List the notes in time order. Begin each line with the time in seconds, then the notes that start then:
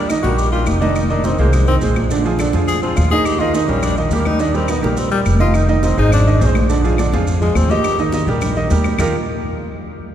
Already playing: D4
0.09 D#3 D#4 D#5, high conga, claves, maracas
0.23 A#1 G3 F#4 G4 A#4, high conga, maracas
0.38 G4, high conga, maracas
0.52 G3 F4 G4 A#4, high conga, maracas
0.66 F1 D#4, high conga, claves, maracas
0.80 D#3 D4 D#4 D#5, high conga, maracas
0.95 D#4, high conga, claves, maracas
1.10 D#3 D4 D#4 D#5, high conga, maracas
1.24 D#3 C4 D#4 D#5, high conga, maracas
1.38 C2 G#3 A#3 G#4 C5, high conga, maracas
1.53 G#3, high conga, low conga, claves, maracas
1.67 D#3 C4 D#4 D#5, high conga, maracas
1.81 A#1 G#3 G#4 C5, high conga, maracas
1.96 high conga, claves, maracas
2.10 D3 D4 D5, high conga, maracas
2.25 F3 F4 G#4, high conga, maracas
2.39 D3 D4 D5, high conga, claves, maracas
2.53 F2 F3 F4 G#4, high conga, maracas
2.67 G#4, high conga, maracas
2.82 F3 C4 F4 G#4, high conga, maracas
2.96 D#2 F4, high conga, claves, maracas
3.11 D#3 D#4 G#4 D#5, high conga, maracas
3.25 G4, high conga, claves, maracas
3.40 D#3 D#4 F4 D#5, high conga, maracas
3.54 D#3 D#4 D#5, high conga, maracas
3.68 A#1 G3 C#4 G4 A#4, high conga, maracas
3.83 D4, high conga, low conga, claves, maracas
3.97 D#3 F3 D#4 D#5, high conga, maracas
4.11 D#2 G3 A#3 G4 A#4, high conga, maracas
4.25 D#4, high conga, claves, maracas
4.40 D#3 D4 D#4 D#5, high conga, maracas
4.54 G3 C4 G4 A#4, high conga, maracas
4.68 D#3 B3 D#4 D#5, high conga, claves, maracas
4.82 A#1 G3 A#3 G4 A#4, high conga, maracas
4.97 C4, high conga, maracas
5.11 G3 G4 A#4, high conga, maracas
5.26 F1, high conga, claves, maracas
5.40 D#3 D#4 F4 D#5, high conga, maracas
5.54 D#4, claves, maracas
5.68 D#3 G3 D#4 D#5, high conga, maracas
5.83 D#3 C4 D#4 D#5, high conga, maracas
5.97 G#1 G#3 D#4 G#4 C5, high conga, maracas
6.12 D4, high conga, low conga, claves, maracas
6.26 D#3 D#4 D#5, high conga, maracas
6.41 A#1 G#3 G#4 C5, high conga, maracas
6.55 high conga, claves, maracas
6.69 D3 D4 D5, high conga, maracas
6.84 F3 F4 G#4, high conga, maracas
6.98 D3 D4 D5, high conga, claves, maracas
7.12 F2 F3 F4 G#4, high conga, maracas
7.27 high conga, maracas
7.41 F3 G#3 F4 G#4, high conga, maracas
7.55 D#2 C4, high conga, claves, maracas
7.70 D#3 D#4 G4 D#5, high conga, maracas
7.84 claves, maracas
7.98 D#3 D#4 D#5, high conga, maracas
8.12 D#3 D#4 D#5, high conga, maracas
8.27 A#1 G3 G4 A#4, high conga, maracas
8.41 high conga, low conga, claves, maracas
8.56 D#3 D#4 D#5, high conga, maracas
8.70 D#2 G3 G4 A#4, high conga, maracas
8.84 high conga, claves, maracas
8.99 D#2 D#3 A#3 D#4 F4 G4 A#4, low conga, claves, maracas